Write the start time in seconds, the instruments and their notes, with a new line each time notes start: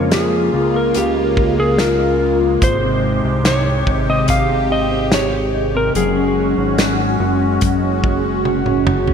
Already playing: analog synth bass F2, clean electric guitar C#3 A#3 F4, analog synth pad C#3 G#3 A#3 F4, electric slide guitar C#5
0.12 clean electric guitar F4, electric slide guitar G#4, snare, closed hi-hat
0.33 clean electric guitar A#3
0.53 analog synth bass C#2, clean electric guitar F4
0.74 clean electric guitar A#3, electric slide guitar A#4
0.94 analog synth bass C#2, clean electric guitar C#3, electric slide guitar G4, closed hi-hat
1.16 clean electric guitar A#3
1.37 clean electric guitar F4, kick
1.58 clean electric guitar A#3, electric slide guitar G#4
1.78 clean electric guitar F4, electric slide guitar A#4, snare, closed hi-hat
1.99 clean electric guitar A#3
2.20 clean electric guitar F4
2.41 clean electric guitar A#3
2.62 analog synth bass G#1, clean electric guitar G#2, analog synth pad C3 G4, electric slide guitar C5, kick, closed hi-hat
2.83 clean electric guitar C4
3.03 clean electric guitar D#4
3.24 analog synth bass C2, clean electric guitar C4
3.44 clean electric guitar D#4, electric slide guitar C#5, snare, closed hi-hat
3.87 analog synth bass G#1, clean electric guitar D#4, kick
4.08 clean electric guitar C4, electric slide guitar D#5
4.28 analog synth bass G#1, clean electric guitar G#2, electric slide guitar F5, kick, closed hi-hat
4.49 clean electric guitar C4
4.70 clean electric guitar D#4, electric slide guitar D#5
4.91 clean electric guitar C4
5.12 clean electric guitar D#4, electric slide guitar C#5, snare, closed hi-hat
5.54 clean electric guitar D#4
5.75 clean electric guitar C4, electric slide guitar A#4
5.95 analog synth bass F#1, clean electric guitar F#3, analog synth pad G#3 C#4 F#4, electric slide guitar G#4, closed hi-hat
6.17 clean electric guitar C#4
6.37 clean electric guitar F#4
6.58 analog synth bass G#1, clean electric guitar C#4
6.78 clean electric guitar F#4, snare, closed hi-hat
7.00 clean electric guitar C#4
7.20 analog synth bass F#1, clean electric guitar F#4
7.41 clean electric guitar C#4
7.61 analog synth bass F#1, clean electric guitar F#3, kick, closed hi-hat
7.83 clean electric guitar C#4
8.04 clean electric guitar F#4, kick
8.24 clean electric guitar C#4
8.45 clean electric guitar F#4, high tom
8.66 clean electric guitar C#4, mid tom
8.87 clean electric guitar F#4, mid tom
9.07 clean electric guitar C#4, floor tom